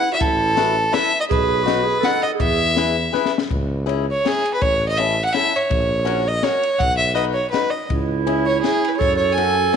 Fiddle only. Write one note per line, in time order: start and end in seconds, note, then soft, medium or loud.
0.00 0.12 F#5 loud
0.13 0.23 E5 medium
0.21 0.95 A4 loud
0.94 1.20 E5 loud
1.21 1.25 D#5 medium
1.30 2.06 B4 loud
2.04 2.22 F#5 loud
2.23 2.30 D#5 medium
2.40 3.30 E5 loud
4.11 4.28 C#5 medium
4.27 4.53 G#4 medium
4.54 4.63 B4 medium
4.61 4.88 C#5 loud
4.88 4.99 D#5 loud
4.97 5.24 E5 loud
5.25 5.34 F#5 medium
5.32 5.57 E5 loud
5.56 6.29 C#5 medium
6.28 6.45 D#5 medium
6.43 6.80 C#5 loud
6.79 6.96 F#5 loud
6.97 7.14 E5 medium
7.15 7.24 D#5 medium
7.33 7.50 C#5 medium
7.50 7.72 B4 medium
7.70 7.88 D#5 medium
8.46 8.60 C#5 medium
8.61 8.89 G#4 medium
8.88 8.96 B4 medium
8.96 9.16 C#5 loud
9.17 9.34 C#5 medium
9.32 9.76 G#5 medium